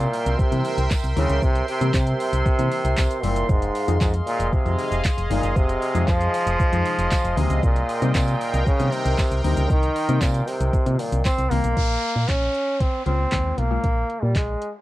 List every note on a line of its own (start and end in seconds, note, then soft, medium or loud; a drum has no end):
0.00 0.41 A#2 loud
0.00 0.38 C3 medium
0.00 0.38 E3 medium
0.00 0.38 G3 medium
0.00 0.38 A#3 medium
0.00 0.38 E4 medium
0.00 3.45 A#4 medium
0.00 3.45 E5 medium
0.00 3.45 G5 medium
0.00 11.73 C6 loud
0.00 closed hi-hat medium
0.00 shaker medium
0.13 open hi-hat medium
0.13 shaker medium
0.26 0.36 C2 medium
0.26 closed hi-hat medium
0.26 shaker medium
0.39 0.91 C3 medium
0.39 kick loud
0.39 shaker medium
0.52 1.05 C3 medium
0.52 0.62 C3 loud
0.52 1.05 E3 medium
0.52 1.05 G3 medium
0.52 1.05 A#3 medium
0.52 1.05 E4 medium
0.52 closed hi-hat medium
0.52 shaker medium
0.65 open hi-hat medium
0.65 shaker medium
0.78 0.88 C2 medium
0.78 closed hi-hat medium
0.78 shaker medium
0.91 kick loud
0.91 snare medium
0.91 clap loud
0.91 tambourine medium
0.91 shaker medium
1.04 1.14 C2 medium
1.04 closed hi-hat medium
1.04 shaker medium
1.16 1.27 D2 medium
1.16 1.70 C3 medium
1.16 1.44 C#3 loud
1.16 1.70 E3 medium
1.16 1.70 G3 medium
1.16 1.70 A#3 medium
1.16 1.70 E4 medium
1.16 open hi-hat medium
1.16 shaker medium
1.29 1.39 C#2 medium
1.29 closed hi-hat medium
1.29 shaker medium
1.42 1.62 C2 loud
1.42 1.68 C3 loud
1.42 kick loud
1.42 shaker medium
1.55 closed hi-hat soft
1.55 shaker soft
1.68 1.93 C3 loud
1.68 open hi-hat medium
1.68 shaker medium
1.81 2.45 C3 medium
1.81 1.91 C3 medium
1.81 2.45 E3 medium
1.81 2.45 G3 medium
1.81 2.45 A#3 medium
1.81 2.45 G4 medium
1.81 closed hi-hat medium
1.81 shaker medium
1.94 2.14 C3 loud
1.94 3.25 C3 loud
1.94 kick loud
1.94 snare medium
1.94 clap loud
1.94 tambourine loud
1.94 shaker medium
2.07 closed hi-hat medium
2.07 shaker medium
2.20 open hi-hat medium
2.20 shaker medium
2.33 2.43 C2 medium
2.33 closed hi-hat medium
2.33 shaker medium
2.46 kick loud
2.46 shaker medium
2.59 3.12 C3 medium
2.59 2.69 C3 loud
2.59 3.12 E3 medium
2.59 3.12 G3 medium
2.59 3.12 A#3 medium
2.59 3.12 E4 loud
2.59 closed hi-hat medium
2.59 shaker medium
2.72 open hi-hat medium
2.72 shaker medium
2.85 2.95 C2 medium
2.85 closed hi-hat medium
2.85 shaker medium
2.98 3.08 C2 medium
2.98 kick loud
2.98 snare medium
2.98 clap loud
2.98 tambourine medium
2.98 shaker medium
3.11 closed hi-hat medium
3.11 shaker medium
3.23 3.43 F#1 medium
3.23 3.51 A#2 medium
3.23 3.49 C3 medium
3.23 3.49 E3 medium
3.23 3.49 G3 medium
3.23 3.49 A#3 medium
3.23 3.50 E4 medium
3.23 open hi-hat medium
3.23 shaker medium
3.36 closed hi-hat medium
3.36 shaker medium
3.49 3.69 F1 loud
3.49 4.01 G#2 loud
3.49 7.59 G#4 medium
3.49 11.73 D#5 medium
3.49 7.59 F5 medium
3.49 kick loud
3.49 shaker medium
3.62 closed hi-hat soft
3.62 shaker soft
3.75 open hi-hat medium
3.75 shaker medium
3.88 3.98 F2 loud
3.88 4.52 C3 medium
3.88 4.52 D#3 medium
3.88 4.52 F3 medium
3.88 4.52 G#3 medium
3.88 4.52 D#4 medium
3.88 closed hi-hat medium
3.88 shaker medium
4.01 4.21 F2 loud
4.01 4.13 G#2 medium
4.01 kick loud
4.01 snare medium
4.01 clap loud
4.01 tambourine medium
4.01 shaker medium
4.14 closed hi-hat medium
4.14 shaker medium
4.27 4.54 A#2 loud
4.27 open hi-hat medium
4.27 shaker medium
4.40 4.50 F1 medium
4.40 closed hi-hat medium
4.40 shaker medium
4.53 4.58 F2 soft
4.53 5.05 C3 medium
4.53 kick loud
4.53 shaker medium
4.66 4.76 F2 loud
4.66 5.19 C3 medium
4.66 5.19 D#3 medium
4.66 5.19 F3 medium
4.66 5.19 G#3 medium
4.66 5.19 D#4 medium
4.66 closed hi-hat medium
4.66 shaker medium
4.79 open hi-hat medium
4.79 shaker medium
4.92 5.02 F1 medium
4.92 closed hi-hat medium
4.92 shaker medium
5.04 kick loud
5.04 snare medium
5.04 clap loud
5.04 tambourine medium
5.04 shaker medium
5.18 5.27 F1 loud
5.18 closed hi-hat medium
5.18 shaker medium
5.30 5.40 G1 loud
5.30 5.58 A#2 medium
5.30 5.83 C3 medium
5.30 5.83 D#3 medium
5.30 5.83 F3 medium
5.30 5.84 G#3 medium
5.30 5.84 D#4 medium
5.30 open hi-hat medium
5.30 shaker medium
5.43 5.53 F#1 medium
5.43 closed hi-hat medium
5.43 shaker medium
5.56 5.76 F1 loud
5.56 6.10 C3 loud
5.56 kick loud
5.56 shaker medium
5.69 closed hi-hat soft
5.69 shaker soft
5.82 open hi-hat medium
5.82 shaker medium
5.95 6.05 F2 loud
5.95 6.59 C3 medium
5.95 6.59 D#3 medium
5.95 6.59 F3 medium
5.95 6.59 G#3 medium
5.95 6.59 D#4 medium
5.95 closed hi-hat medium
5.95 shaker medium
6.08 6.28 F2 loud
6.08 7.39 F3 loud
6.08 kick loud
6.08 snare medium
6.08 clap loud
6.08 tambourine loud
6.08 shaker medium
6.21 closed hi-hat medium
6.21 shaker medium
6.34 open hi-hat medium
6.34 shaker medium
6.47 6.57 F1 loud
6.47 closed hi-hat medium
6.47 shaker medium
6.60 kick loud
6.60 shaker medium
6.72 6.83 F2 medium
6.72 7.26 C3 medium
6.72 7.26 D#3 medium
6.72 7.26 F3 medium
6.72 7.26 G#3 medium
6.72 7.26 D#4 loud
6.72 closed hi-hat medium
6.72 shaker medium
6.85 open hi-hat medium
6.85 shaker medium
6.98 7.08 F1 medium
6.98 closed hi-hat medium
6.98 shaker medium
7.11 kick loud
7.11 snare loud
7.11 clap loud
7.11 tambourine medium
7.11 shaker medium
7.24 7.34 F1 loud
7.24 closed hi-hat medium
7.24 shaker medium
7.37 7.47 D2 loud
7.37 7.63 C3 medium
7.37 7.63 C3 loud
7.37 7.63 D#3 medium
7.37 7.63 F3 medium
7.37 7.63 G#3 medium
7.37 7.63 A#3 medium
7.37 open hi-hat medium
7.37 shaker medium
7.50 7.60 C#2 medium
7.50 closed hi-hat medium
7.50 shaker medium
7.63 7.83 C2 loud
7.63 8.11 A#2 loud
7.63 11.73 A#4 medium
7.63 11.73 G5 medium
7.63 kick loud
7.63 shaker medium
7.76 closed hi-hat soft
7.76 shaker soft
7.89 open hi-hat medium
7.89 shaker medium
8.02 8.65 C3 medium
8.02 8.12 C3 loud
8.02 8.66 D#3 medium
8.02 8.66 G3 medium
8.02 8.66 A#3 medium
8.02 8.66 D#4 medium
8.02 closed hi-hat medium
8.02 shaker medium
8.15 8.68 A#2 loud
8.15 8.35 C3 loud
8.15 kick loud
8.15 snare medium
8.15 clap loud
8.15 tambourine medium
8.15 shaker medium
8.28 closed hi-hat medium
8.28 shaker medium
8.41 open hi-hat medium
8.41 shaker medium
8.54 8.64 C2 medium
8.54 closed hi-hat medium
8.54 shaker medium
8.67 8.94 C#3 loud
8.67 kick loud
8.67 shaker medium
8.79 9.32 C3 medium
8.79 8.90 C3 loud
8.79 9.33 D#3 medium
8.79 9.33 G3 medium
8.79 9.33 A#3 medium
8.79 9.33 D#4 medium
8.79 closed hi-hat medium
8.79 shaker medium
8.92 9.44 C3 loud
8.92 open hi-hat medium
8.92 shaker medium
9.05 9.15 C2 loud
9.05 closed hi-hat medium
9.05 shaker medium
9.18 kick loud
9.18 snare medium
9.18 clap loud
9.18 tambourine medium
9.18 shaker medium
9.31 9.41 C2 loud
9.31 closed hi-hat medium
9.31 shaker medium
9.44 9.54 D2 medium
9.44 9.97 C3 medium
9.44 9.72 C3 medium
9.44 9.97 D#3 medium
9.44 9.97 G3 medium
9.44 9.97 A#3 medium
9.44 9.97 D#4 medium
9.44 open hi-hat medium
9.44 shaker medium
9.57 9.67 C#2 medium
9.57 closed hi-hat medium
9.57 shaker medium
9.70 9.90 C2 loud
9.70 10.23 D#3 loud
9.70 kick loud
9.70 shaker medium
9.83 closed hi-hat soft
9.83 shaker soft
9.96 open hi-hat medium
9.96 shaker medium
10.09 10.72 C3 medium
10.09 10.19 C3 loud
10.09 10.72 D#3 medium
10.09 10.73 G3 medium
10.09 10.73 A#3 medium
10.09 10.73 D#4 medium
10.09 closed hi-hat medium
10.09 shaker medium
10.22 10.49 A#2 medium
10.22 10.42 C3 loud
10.22 kick loud
10.22 snare medium
10.22 clap loud
10.22 tambourine loud
10.22 shaker medium
10.35 closed hi-hat medium
10.35 shaker medium
10.48 11.01 C3 loud
10.48 open hi-hat medium
10.48 shaker medium
10.61 10.71 C2 loud
10.61 closed hi-hat medium
10.61 shaker medium
10.74 kick loud
10.74 shaker medium
10.86 11.39 C3 medium
10.86 10.96 C3 loud
10.86 11.39 D#3 medium
10.86 11.40 G3 medium
10.86 11.40 A#3 medium
10.86 11.40 F4 medium
10.86 closed hi-hat medium
10.86 shaker medium
10.99 11.25 A#2 medium
10.99 open hi-hat medium
10.99 shaker medium
11.12 11.22 C2 medium
11.12 closed hi-hat medium
11.12 shaker medium
11.25 11.53 C4 loud
11.25 kick loud
11.25 snare medium
11.25 clap loud
11.25 tambourine medium
11.25 shaker medium
11.38 11.48 C2 medium
11.38 closed hi-hat medium
11.38 shaker medium
11.51 11.61 C2 loud
11.51 11.77 C3 medium
11.51 11.77 D#3 medium
11.51 11.77 G3 medium
11.51 12.30 A#3 loud
11.51 11.77 A#3 medium
11.51 11.77 C4 medium
11.51 open hi-hat medium
11.51 shaker medium
11.64 11.74 B1 medium
11.64 closed hi-hat medium
11.64 shaker medium
11.77 11.97 A#1 loud
11.77 kick loud
11.77 closed hi-hat medium
11.77 downlifter medium
12.03 closed hi-hat soft
12.16 12.26 A#2 medium
12.29 12.49 A#1 loud
12.29 12.82 C#4 loud
12.29 kick loud
12.29 snare medium
12.29 clap loud
12.29 closed hi-hat medium
12.55 closed hi-hat medium
12.80 13.06 C4 loud
12.80 kick loud
12.80 closed hi-hat medium
13.06 13.26 C#2 medium
13.06 13.27 C#3 medium
13.06 13.27 G#3 medium
13.06 13.28 A#3 medium
13.06 13.60 C4 loud
13.06 13.28 F4 medium
13.06 closed hi-hat soft
13.32 13.52 D#2 loud
13.32 13.64 C#3 medium
13.32 13.64 G#3 medium
13.32 13.64 A#3 medium
13.32 13.64 F4 medium
13.32 kick loud
13.32 snare medium
13.32 clap loud
13.32 closed hi-hat medium
13.58 13.78 B1 loud
13.58 14.24 A#3 loud
13.58 closed hi-hat medium
13.71 14.56 C#3 medium
13.71 14.56 G#3 medium
13.71 14.56 A#3 medium
13.71 14.56 F4 medium
13.84 14.04 A#1 loud
13.84 kick loud
13.84 closed hi-hat medium
14.10 closed hi-hat soft
14.23 14.37 A#2 loud
14.23 14.37 G3 medium
14.36 14.55 A#1 loud
14.36 14.72 G#3 medium
14.36 kick loud
14.36 snare medium
14.36 clap loud
14.36 closed hi-hat medium
14.62 closed hi-hat medium